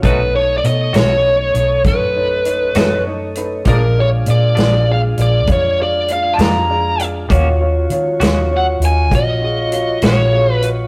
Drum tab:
HH |x-xx-xx-xx-x|x-xx-xx-xx-x|x-xx-xx-xx-x|
SD |---o-----o--|---o-----o--|---o-----o--|
BD |o-----o-----|o-----o-----|o-----o-----|